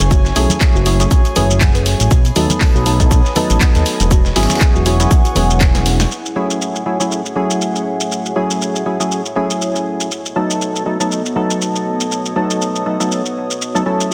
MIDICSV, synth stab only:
0, 0, Header, 1, 2, 480
1, 0, Start_track
1, 0, Tempo, 500000
1, 106, Time_signature, 4, 2, 24, 8
1, 13572, End_track
2, 0, Start_track
2, 0, Title_t, "Synth stab"
2, 0, Program_c, 0, 62
2, 0, Note_on_c, 0, 54, 96
2, 0, Note_on_c, 0, 57, 82
2, 0, Note_on_c, 0, 61, 91
2, 0, Note_on_c, 0, 64, 83
2, 0, Note_on_c, 0, 68, 103
2, 318, Note_off_c, 0, 54, 0
2, 319, Note_off_c, 0, 57, 0
2, 319, Note_off_c, 0, 61, 0
2, 321, Note_off_c, 0, 64, 0
2, 321, Note_off_c, 0, 68, 0
2, 343, Note_on_c, 0, 54, 92
2, 344, Note_on_c, 0, 57, 88
2, 345, Note_on_c, 0, 61, 80
2, 346, Note_on_c, 0, 64, 85
2, 347, Note_on_c, 0, 68, 104
2, 799, Note_off_c, 0, 54, 0
2, 799, Note_off_c, 0, 57, 0
2, 800, Note_off_c, 0, 61, 0
2, 800, Note_off_c, 0, 64, 0
2, 801, Note_off_c, 0, 68, 0
2, 824, Note_on_c, 0, 54, 69
2, 825, Note_on_c, 0, 57, 61
2, 826, Note_on_c, 0, 61, 63
2, 826, Note_on_c, 0, 64, 64
2, 827, Note_on_c, 0, 68, 72
2, 939, Note_off_c, 0, 54, 0
2, 939, Note_off_c, 0, 57, 0
2, 940, Note_off_c, 0, 61, 0
2, 940, Note_off_c, 0, 64, 0
2, 941, Note_off_c, 0, 68, 0
2, 958, Note_on_c, 0, 54, 83
2, 959, Note_on_c, 0, 57, 74
2, 960, Note_on_c, 0, 61, 77
2, 961, Note_on_c, 0, 64, 74
2, 962, Note_on_c, 0, 68, 85
2, 1169, Note_off_c, 0, 54, 0
2, 1170, Note_off_c, 0, 57, 0
2, 1170, Note_off_c, 0, 61, 0
2, 1171, Note_off_c, 0, 64, 0
2, 1171, Note_off_c, 0, 68, 0
2, 1301, Note_on_c, 0, 54, 93
2, 1303, Note_on_c, 0, 57, 89
2, 1305, Note_on_c, 0, 61, 89
2, 1307, Note_on_c, 0, 64, 86
2, 1309, Note_on_c, 0, 68, 103
2, 2011, Note_off_c, 0, 54, 0
2, 2012, Note_off_c, 0, 57, 0
2, 2013, Note_off_c, 0, 61, 0
2, 2014, Note_off_c, 0, 64, 0
2, 2014, Note_off_c, 0, 68, 0
2, 2263, Note_on_c, 0, 54, 93
2, 2264, Note_on_c, 0, 57, 85
2, 2265, Note_on_c, 0, 59, 86
2, 2266, Note_on_c, 0, 63, 81
2, 2267, Note_on_c, 0, 69, 98
2, 2719, Note_off_c, 0, 54, 0
2, 2719, Note_off_c, 0, 57, 0
2, 2720, Note_off_c, 0, 59, 0
2, 2720, Note_off_c, 0, 63, 0
2, 2721, Note_off_c, 0, 69, 0
2, 2743, Note_on_c, 0, 54, 67
2, 2744, Note_on_c, 0, 57, 64
2, 2745, Note_on_c, 0, 59, 65
2, 2746, Note_on_c, 0, 63, 63
2, 2747, Note_on_c, 0, 69, 79
2, 2859, Note_off_c, 0, 54, 0
2, 2859, Note_off_c, 0, 57, 0
2, 2859, Note_off_c, 0, 59, 0
2, 2860, Note_off_c, 0, 63, 0
2, 2860, Note_off_c, 0, 69, 0
2, 2878, Note_on_c, 0, 54, 81
2, 2879, Note_on_c, 0, 57, 71
2, 2880, Note_on_c, 0, 59, 77
2, 2880, Note_on_c, 0, 63, 73
2, 2881, Note_on_c, 0, 69, 87
2, 3089, Note_off_c, 0, 54, 0
2, 3090, Note_off_c, 0, 57, 0
2, 3090, Note_off_c, 0, 59, 0
2, 3090, Note_off_c, 0, 63, 0
2, 3091, Note_off_c, 0, 69, 0
2, 3222, Note_on_c, 0, 54, 96
2, 3223, Note_on_c, 0, 57, 87
2, 3225, Note_on_c, 0, 59, 88
2, 3227, Note_on_c, 0, 63, 90
2, 3229, Note_on_c, 0, 69, 104
2, 3931, Note_off_c, 0, 54, 0
2, 3932, Note_off_c, 0, 57, 0
2, 3933, Note_off_c, 0, 59, 0
2, 3934, Note_off_c, 0, 63, 0
2, 3934, Note_off_c, 0, 69, 0
2, 4183, Note_on_c, 0, 54, 91
2, 4184, Note_on_c, 0, 59, 81
2, 4185, Note_on_c, 0, 61, 81
2, 4185, Note_on_c, 0, 64, 86
2, 4186, Note_on_c, 0, 68, 105
2, 4639, Note_off_c, 0, 54, 0
2, 4639, Note_off_c, 0, 59, 0
2, 4640, Note_off_c, 0, 61, 0
2, 4640, Note_off_c, 0, 64, 0
2, 4641, Note_off_c, 0, 68, 0
2, 4663, Note_on_c, 0, 54, 71
2, 4664, Note_on_c, 0, 59, 66
2, 4665, Note_on_c, 0, 61, 63
2, 4666, Note_on_c, 0, 64, 61
2, 4667, Note_on_c, 0, 68, 79
2, 4779, Note_off_c, 0, 54, 0
2, 4779, Note_off_c, 0, 59, 0
2, 4779, Note_off_c, 0, 61, 0
2, 4780, Note_off_c, 0, 64, 0
2, 4780, Note_off_c, 0, 68, 0
2, 4797, Note_on_c, 0, 54, 83
2, 4798, Note_on_c, 0, 59, 71
2, 4799, Note_on_c, 0, 61, 73
2, 4800, Note_on_c, 0, 64, 75
2, 4801, Note_on_c, 0, 68, 87
2, 5009, Note_off_c, 0, 54, 0
2, 5009, Note_off_c, 0, 59, 0
2, 5009, Note_off_c, 0, 61, 0
2, 5010, Note_off_c, 0, 64, 0
2, 5010, Note_off_c, 0, 68, 0
2, 5142, Note_on_c, 0, 54, 96
2, 5143, Note_on_c, 0, 59, 88
2, 5145, Note_on_c, 0, 61, 88
2, 5147, Note_on_c, 0, 64, 86
2, 5149, Note_on_c, 0, 68, 107
2, 5851, Note_off_c, 0, 54, 0
2, 5852, Note_off_c, 0, 59, 0
2, 5853, Note_off_c, 0, 61, 0
2, 5854, Note_off_c, 0, 64, 0
2, 5854, Note_off_c, 0, 68, 0
2, 6103, Note_on_c, 0, 54, 86
2, 6104, Note_on_c, 0, 57, 80
2, 6104, Note_on_c, 0, 61, 81
2, 6106, Note_on_c, 0, 64, 80
2, 6106, Note_on_c, 0, 68, 96
2, 6559, Note_off_c, 0, 54, 0
2, 6559, Note_off_c, 0, 57, 0
2, 6560, Note_off_c, 0, 61, 0
2, 6560, Note_off_c, 0, 64, 0
2, 6560, Note_off_c, 0, 68, 0
2, 6583, Note_on_c, 0, 54, 66
2, 6584, Note_on_c, 0, 57, 60
2, 6585, Note_on_c, 0, 61, 57
2, 6586, Note_on_c, 0, 64, 62
2, 6587, Note_on_c, 0, 68, 71
2, 6699, Note_off_c, 0, 54, 0
2, 6699, Note_off_c, 0, 57, 0
2, 6699, Note_off_c, 0, 61, 0
2, 6700, Note_off_c, 0, 64, 0
2, 6700, Note_off_c, 0, 68, 0
2, 6718, Note_on_c, 0, 54, 76
2, 6718, Note_on_c, 0, 57, 72
2, 6719, Note_on_c, 0, 61, 69
2, 6720, Note_on_c, 0, 64, 70
2, 6721, Note_on_c, 0, 68, 81
2, 6929, Note_off_c, 0, 54, 0
2, 6929, Note_off_c, 0, 57, 0
2, 6930, Note_off_c, 0, 61, 0
2, 6930, Note_off_c, 0, 64, 0
2, 6931, Note_off_c, 0, 68, 0
2, 7061, Note_on_c, 0, 54, 86
2, 7063, Note_on_c, 0, 57, 84
2, 7065, Note_on_c, 0, 61, 84
2, 7067, Note_on_c, 0, 64, 82
2, 7069, Note_on_c, 0, 68, 95
2, 7998, Note_off_c, 0, 54, 0
2, 7999, Note_off_c, 0, 57, 0
2, 8000, Note_off_c, 0, 61, 0
2, 8001, Note_off_c, 0, 64, 0
2, 8002, Note_off_c, 0, 68, 0
2, 8023, Note_on_c, 0, 54, 89
2, 8024, Note_on_c, 0, 57, 81
2, 8024, Note_on_c, 0, 61, 80
2, 8026, Note_on_c, 0, 64, 80
2, 8027, Note_on_c, 0, 68, 95
2, 8479, Note_off_c, 0, 54, 0
2, 8479, Note_off_c, 0, 57, 0
2, 8480, Note_off_c, 0, 61, 0
2, 8480, Note_off_c, 0, 64, 0
2, 8481, Note_off_c, 0, 68, 0
2, 8503, Note_on_c, 0, 54, 64
2, 8504, Note_on_c, 0, 57, 60
2, 8504, Note_on_c, 0, 61, 60
2, 8505, Note_on_c, 0, 64, 59
2, 8506, Note_on_c, 0, 68, 73
2, 8619, Note_off_c, 0, 54, 0
2, 8619, Note_off_c, 0, 57, 0
2, 8619, Note_off_c, 0, 61, 0
2, 8620, Note_off_c, 0, 64, 0
2, 8620, Note_off_c, 0, 68, 0
2, 8637, Note_on_c, 0, 54, 74
2, 8638, Note_on_c, 0, 57, 72
2, 8639, Note_on_c, 0, 61, 69
2, 8640, Note_on_c, 0, 64, 67
2, 8641, Note_on_c, 0, 68, 86
2, 8849, Note_off_c, 0, 54, 0
2, 8849, Note_off_c, 0, 57, 0
2, 8850, Note_off_c, 0, 61, 0
2, 8850, Note_off_c, 0, 64, 0
2, 8851, Note_off_c, 0, 68, 0
2, 8982, Note_on_c, 0, 54, 86
2, 8983, Note_on_c, 0, 57, 84
2, 8985, Note_on_c, 0, 61, 81
2, 8987, Note_on_c, 0, 64, 83
2, 8989, Note_on_c, 0, 68, 99
2, 9691, Note_off_c, 0, 54, 0
2, 9692, Note_off_c, 0, 57, 0
2, 9693, Note_off_c, 0, 61, 0
2, 9694, Note_off_c, 0, 64, 0
2, 9694, Note_off_c, 0, 68, 0
2, 9943, Note_on_c, 0, 54, 87
2, 9944, Note_on_c, 0, 57, 78
2, 9945, Note_on_c, 0, 59, 79
2, 9946, Note_on_c, 0, 63, 79
2, 9947, Note_on_c, 0, 69, 97
2, 10399, Note_off_c, 0, 54, 0
2, 10399, Note_off_c, 0, 57, 0
2, 10400, Note_off_c, 0, 59, 0
2, 10400, Note_off_c, 0, 63, 0
2, 10401, Note_off_c, 0, 69, 0
2, 10423, Note_on_c, 0, 54, 68
2, 10424, Note_on_c, 0, 57, 63
2, 10425, Note_on_c, 0, 59, 60
2, 10426, Note_on_c, 0, 63, 63
2, 10426, Note_on_c, 0, 69, 73
2, 10539, Note_off_c, 0, 54, 0
2, 10539, Note_off_c, 0, 57, 0
2, 10539, Note_off_c, 0, 59, 0
2, 10540, Note_off_c, 0, 63, 0
2, 10540, Note_off_c, 0, 69, 0
2, 10558, Note_on_c, 0, 54, 77
2, 10559, Note_on_c, 0, 57, 69
2, 10560, Note_on_c, 0, 59, 69
2, 10560, Note_on_c, 0, 63, 73
2, 10561, Note_on_c, 0, 69, 79
2, 10769, Note_off_c, 0, 54, 0
2, 10769, Note_off_c, 0, 57, 0
2, 10770, Note_off_c, 0, 59, 0
2, 10770, Note_off_c, 0, 63, 0
2, 10771, Note_off_c, 0, 69, 0
2, 10901, Note_on_c, 0, 54, 93
2, 10903, Note_on_c, 0, 57, 80
2, 10905, Note_on_c, 0, 59, 85
2, 10906, Note_on_c, 0, 63, 80
2, 10909, Note_on_c, 0, 69, 103
2, 11838, Note_off_c, 0, 54, 0
2, 11839, Note_off_c, 0, 57, 0
2, 11840, Note_off_c, 0, 59, 0
2, 11841, Note_off_c, 0, 63, 0
2, 11842, Note_off_c, 0, 69, 0
2, 11863, Note_on_c, 0, 54, 86
2, 11864, Note_on_c, 0, 57, 77
2, 11865, Note_on_c, 0, 59, 82
2, 11866, Note_on_c, 0, 63, 82
2, 11867, Note_on_c, 0, 69, 96
2, 12319, Note_off_c, 0, 54, 0
2, 12320, Note_off_c, 0, 57, 0
2, 12320, Note_off_c, 0, 59, 0
2, 12321, Note_off_c, 0, 63, 0
2, 12321, Note_off_c, 0, 69, 0
2, 12343, Note_on_c, 0, 54, 66
2, 12344, Note_on_c, 0, 57, 61
2, 12345, Note_on_c, 0, 59, 57
2, 12346, Note_on_c, 0, 63, 59
2, 12346, Note_on_c, 0, 69, 71
2, 12458, Note_off_c, 0, 54, 0
2, 12459, Note_off_c, 0, 57, 0
2, 12459, Note_off_c, 0, 59, 0
2, 12460, Note_off_c, 0, 63, 0
2, 12460, Note_off_c, 0, 69, 0
2, 12478, Note_on_c, 0, 54, 74
2, 12479, Note_on_c, 0, 57, 69
2, 12480, Note_on_c, 0, 59, 69
2, 12480, Note_on_c, 0, 63, 70
2, 12481, Note_on_c, 0, 69, 84
2, 12689, Note_off_c, 0, 54, 0
2, 12689, Note_off_c, 0, 57, 0
2, 12690, Note_off_c, 0, 59, 0
2, 12690, Note_off_c, 0, 63, 0
2, 12691, Note_off_c, 0, 69, 0
2, 13198, Note_on_c, 0, 54, 92
2, 13198, Note_on_c, 0, 57, 84
2, 13200, Note_on_c, 0, 59, 82
2, 13200, Note_on_c, 0, 63, 84
2, 13201, Note_on_c, 0, 69, 102
2, 13279, Note_off_c, 0, 54, 0
2, 13279, Note_off_c, 0, 57, 0
2, 13280, Note_off_c, 0, 59, 0
2, 13280, Note_off_c, 0, 63, 0
2, 13281, Note_off_c, 0, 69, 0
2, 13302, Note_on_c, 0, 54, 90
2, 13303, Note_on_c, 0, 57, 82
2, 13304, Note_on_c, 0, 61, 82
2, 13305, Note_on_c, 0, 64, 81
2, 13306, Note_on_c, 0, 69, 96
2, 13572, Note_off_c, 0, 54, 0
2, 13572, Note_off_c, 0, 57, 0
2, 13572, Note_off_c, 0, 61, 0
2, 13572, Note_off_c, 0, 64, 0
2, 13572, Note_off_c, 0, 69, 0
2, 13572, End_track
0, 0, End_of_file